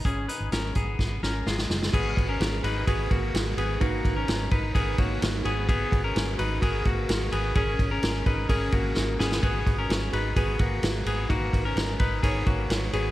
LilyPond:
<<
  \new Staff \with { instrumentName = "Synth keys" } { \time 4/4 \key gis \minor \tempo 4 = 128 r1 | <fis' gis' b'>8 <fis' gis' b'>8 <fis' gis' b'>8 <fis' gis' b'>8 <fis' gis' b'>8 <fis' gis' b'>8 <fis' gis' b'>8 <fis' gis' b'>8 | <dis' ais' b'>8 <dis' ais' b'>8 <dis' ais' b'>8 <dis' ais' b'>8 <dis' ais' b'>8 <dis' ais' cis''>8 <dis' ais' b'>8 <fis' gis' b'>8~ | <fis' gis' b'>8 <fis' gis' b'>8 <fis' gis' b'>8 <fis' gis' b'>8 <fis' gis' ais'>8 <fis' gis' b'>8 <fis' gis' ais'>8 <fis' gis' b'>8 |
<cis' gis' ais'>8 <cis' gis' ais'>8 <cis' gis' ais'>8 <cis' gis' ais'>8 <cis' gis' ais'>8 <cis' gis' ais'>8 <cis' gis' ais'>8 <cis' gis' ais'>8 | <fis' gis' b'>8 <fis' gis' b'>8 <fis' gis' b'>8 <fis' gis' b'>8 <fis' gis' b'>8 <fis' gis' b'>8 <fis' gis' b'>8 <fis' gis' b'>8 | <dis' ais' b'>8 <dis' ais' b'>8 <dis' ais' b'>8 <dis' ais' b'>8 <dis' ais' cis''>8 <dis' ais' b'>8 <dis' ais' b'>8 <fis' gis' b'>8 | }
  \new Staff \with { instrumentName = "Clean electric guitar" } { \time 4/4 \key gis \minor <cis' gis'>8 <dis' b'>8 <cis' ais'>8 <b gis'>4 <cis' ais'>8 <gis eis'>4 | <b gis'>8. <cis' ais'>8. <dis' b'>8 <b gis'>8 <ais fis'>4 <b gis'>8 | <ais fis'>8. <cis' ais'>8. <dis' b'>8 <b gis'>8 <ais fis'>4 <b gis'>8 | <b gis'>8. <cis' ais'>8. <dis' b'>8 <b gis'>8 <ais fis'>4 <b gis'>8 |
<cis' gis'>8. <cis' ais'>8. <dis' b'>8 <cis' gis'>8 <ais fis'>4 <b gis'>8 | <b gis'>8. <cis' ais'>8. <dis' b'>8 <b gis'>8 <ais fis'>4 <b gis'>8 | <ais fis'>8. <cis' ais'>8. <dis' b'>8 <b gis'>8 <ais fis'>4 <b gis'>8 | }
  \new Staff \with { instrumentName = "Fingered electric bass" } { \clef bass \time 4/4 \key gis \minor gis,,8 r16 gis,,16 gis,,8 gis,,8 gis,,8 gis,,8 gis,,8 fis,,8 | gis,,8 gis,,8 gis,,8 gis,,8 gis,,8 gis,,8 gis,,8 gis,,8 | gis,,8 gis,,8 gis,,8 gis,,8 gis,,8 gis,,8 gis,,8 gis,,8~ | gis,,8 gis,,8 gis,,8 gis,,8 gis,,8 gis,,8 gis,,8 gis,,8 |
gis,,8 gis,,8 gis,,8 gis,,8 gis,,8 gis,,8 gis,,8 gis,,8 | gis,,8 gis,,8 gis,,8 gis,,8 gis,,8 gis,,8 gis,,8 gis,,8 | gis,,8 gis,,8 gis,,8 gis,,8 gis,,8 gis,,8 gis,,8 gis,,8 | }
  \new DrumStaff \with { instrumentName = "Drums" } \drummode { \time 4/4 <hh bd>8 hh8 <hh sn>8 <hh bd>8 <bd sn>8 sn8 sn16 sn16 sn16 sn16 | <cymc bd>8 <bd cymr>8 <cymr sn>8 cymr8 <bd cymr>8 <bd cymr>8 <cymr sn>8 cymr8 | <bd cymr>8 <bd cymr>8 <cymr sn>8 <bd cymr>8 <bd cymr>8 <bd cymr>8 <cymr sn>8 cymr8 | <bd cymr>8 <bd cymr>8 <cymr sn>8 cymr8 <bd cymr>8 <bd cymr>8 <cymr sn>8 cymr8 |
<bd cymr>8 <bd cymr>8 <cymr sn>8 <bd cymr>8 <bd cymr>8 <bd cymr>8 sn8 sn16 sn16 | <bd cymr>8 <bd cymr>8 <cymr sn>8 cymr8 <bd cymr>8 <bd cymr>8 <cymr sn>8 cymr8 | <bd cymr>8 <bd cymr>8 <cymr sn>8 <bd cymr>8 <bd cymr>8 <bd cymr>8 <cymr sn>8 cymr8 | }
>>